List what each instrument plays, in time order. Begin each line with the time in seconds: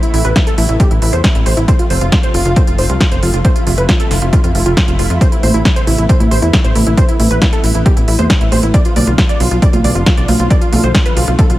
Already playing: analog synth pad C3 A3 B3 E4
0.03 supersaw synth E4, closed hi-hat
0.14 analog synth bass A1, supersaw synth E4, open hi-hat
0.25 analog synth bass A1, supersaw synth B4, closed hi-hat
0.36 supersaw synth E4, kick, snare, closed hi-hat
0.47 supersaw synth A4, closed hi-hat
0.58 analog synth bass A1, supersaw synth E4, open hi-hat
0.69 analog synth bass A1, supersaw synth E4, closed hi-hat
0.80 supersaw synth G4, kick, closed hi-hat
0.91 analog synth bass A1, supersaw synth E4, closed hi-hat
1.02 analog synth bass A1, supersaw synth E4, open hi-hat
1.13 analog synth bass E2, supersaw synth C5, closed hi-hat
1.24 supersaw synth E4, kick, snare, closed hi-hat
1.35 analog synth bass A1, supersaw synth E4, closed hi-hat
1.46 analog synth bass A1, supersaw synth C5, open hi-hat
1.57 analog synth bass A1, supersaw synth E4, closed hi-hat
1.68 analog synth pad F3 A3 F4, supersaw synth C5, kick, closed hi-hat
1.79 supersaw synth F4, closed hi-hat
1.90 analog synth bass F1, supersaw synth C5, open hi-hat
2.01 analog synth bass F1, supersaw synth F4, closed hi-hat
2.12 supersaw synth F4, kick, snare, closed hi-hat
2.23 supersaw synth C5, closed hi-hat
2.34 analog synth bass F1, supersaw synth F4, open hi-hat
2.45 analog synth bass F1, supersaw synth F4, closed hi-hat
2.56 supersaw synth C5, kick, closed hi-hat
2.67 analog synth bass F1, supersaw synth F4, closed hi-hat
2.78 analog synth bass F1, supersaw synth C5, open hi-hat
2.90 analog synth bass C2, supersaw synth F4, closed hi-hat
3.00 supersaw synth F4, kick, snare, closed hi-hat
3.12 analog synth bass F1, supersaw synth C5, closed hi-hat
3.23 analog synth bass F1, supersaw synth F4, open hi-hat
3.34 analog synth bass F1, supersaw synth F4, closed hi-hat
3.45 analog synth pad E4, supersaw synth C5, kick, closed hi-hat
3.56 supersaw synth F4, closed hi-hat
3.67 analog synth bass F1, supersaw synth F4, open hi-hat
3.78 analog synth bass F1, supersaw synth B4, closed hi-hat
3.89 supersaw synth F4, kick, snare, closed hi-hat
4.00 supersaw synth A4, closed hi-hat
4.11 analog synth bass F1, supersaw synth F4, snare, open hi-hat
4.22 analog synth bass F1, supersaw synth F4, closed hi-hat
4.33 supersaw synth F4, kick, closed hi-hat
4.44 analog synth bass F2, supersaw synth F4, closed hi-hat
4.55 analog synth bass F1, supersaw synth F4, open hi-hat
4.66 analog synth bass F1, supersaw synth F4, closed hi-hat
4.77 supersaw synth F4, kick, snare, closed hi-hat
4.88 analog synth bass F1, supersaw synth F4, closed hi-hat
4.99 analog synth bass F1, supersaw synth F4, open hi-hat
5.10 analog synth bass F2, supersaw synth F4, closed hi-hat
5.21 analog synth pad B3, supersaw synth C5, kick, closed hi-hat
5.32 supersaw synth E4, closed hi-hat
5.43 analog synth bass A1, supersaw synth C5, open hi-hat, high conga
5.54 analog synth bass A1, supersaw synth E4, closed hi-hat
5.65 supersaw synth E4, kick, snare, closed hi-hat
5.76 supersaw synth C5, closed hi-hat
5.87 analog synth bass A1, supersaw synth E4, open hi-hat
5.98 analog synth bass A1, supersaw synth E4, closed hi-hat
6.09 supersaw synth C5, kick, closed hi-hat
6.20 analog synth bass A1, supersaw synth E4, closed hi-hat, high conga
6.31 analog synth bass A1, supersaw synth C5, open hi-hat
6.42 analog synth bass E2, supersaw synth E4, closed hi-hat
6.53 supersaw synth E4, kick, snare, closed hi-hat
6.64 analog synth bass A1, supersaw synth C5, closed hi-hat
6.75 analog synth bass A1, supersaw synth E4, open hi-hat, high conga
6.86 analog synth bass A1, supersaw synth E4, closed hi-hat
6.97 supersaw synth C5, kick, closed hi-hat
7.09 supersaw synth E4, closed hi-hat
7.20 analog synth bass A1, supersaw synth E4, open hi-hat, high conga
7.31 analog synth bass A1, supersaw synth B4, closed hi-hat
7.42 supersaw synth E4, kick, snare, closed hi-hat
7.53 supersaw synth A4, closed hi-hat
7.64 analog synth bass A1, supersaw synth E4, open hi-hat
7.75 analog synth bass A1, supersaw synth E4, closed hi-hat
7.86 supersaw synth G4, kick, closed hi-hat
7.97 analog synth bass A1, supersaw synth E4, closed hi-hat
8.08 analog synth bass A1, supersaw synth E4, open hi-hat
8.19 analog synth bass E2, supersaw synth C5, closed hi-hat, high conga
8.30 supersaw synth E4, kick, snare, closed hi-hat
8.41 analog synth bass A1, supersaw synth E4, closed hi-hat
8.52 analog synth bass A1, supersaw synth C5, open hi-hat, high conga
8.63 analog synth bass A1, supersaw synth E4, closed hi-hat
8.74 analog synth pad D3 F3 F4, supersaw synth D5, kick, closed hi-hat
8.85 supersaw synth F4, closed hi-hat
8.96 analog synth bass B1, supersaw synth D5, open hi-hat, high conga
9.07 analog synth bass B1, supersaw synth F4, closed hi-hat
9.18 supersaw synth F4, kick, snare, closed hi-hat
9.29 supersaw synth D5, closed hi-hat
9.40 analog synth bass B1, supersaw synth F4, open hi-hat
9.51 analog synth bass B1, supersaw synth F4, closed hi-hat
9.62 supersaw synth D5, kick, closed hi-hat
9.73 analog synth bass B1, supersaw synth F4, closed hi-hat, high conga
9.84 analog synth bass B1, supersaw synth D5, open hi-hat
9.95 analog synth bass F1, supersaw synth F4, closed hi-hat
10.06 supersaw synth F4, kick, snare, closed hi-hat
10.17 analog synth bass B1, supersaw synth D5, closed hi-hat
10.28 analog synth bass B1, supersaw synth F4, open hi-hat, high conga
10.39 analog synth bass B1, supersaw synth F4, closed hi-hat
10.50 analog synth pad A3, supersaw synth D5, kick, closed hi-hat
10.62 supersaw synth F4, closed hi-hat
10.73 analog synth bass B1, supersaw synth F4, open hi-hat, high conga
10.84 analog synth bass B1, supersaw synth C5, closed hi-hat
10.95 supersaw synth F4, kick, snare, closed hi-hat
11.06 supersaw synth B4, closed hi-hat
11.17 analog synth bass B1, supersaw synth F4, open hi-hat
11.28 analog synth bass B1, supersaw synth F4, closed hi-hat
11.39 supersaw synth A4, kick, closed hi-hat
11.50 analog synth bass B1, supersaw synth F4, closed hi-hat